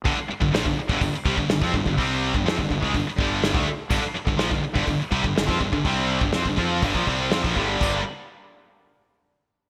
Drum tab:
CC |----------------|----------------|x---------------|----------------|
HH |o---o---o---o---|o---o---o---o---|----o---o---o---|o---o---o---o---|
SD |----o-------o---|----o-------o---|----o-------o---|----o-------o---|
BD |o--o-o-oo-oo-ooo|o--o-oooo-o--o--|o--o-o-oo-oo-ooo|o--o-oo-ooo--oo-|

CC |x---------------|
HH |----------------|
SD |----------------|
BD |o---------------|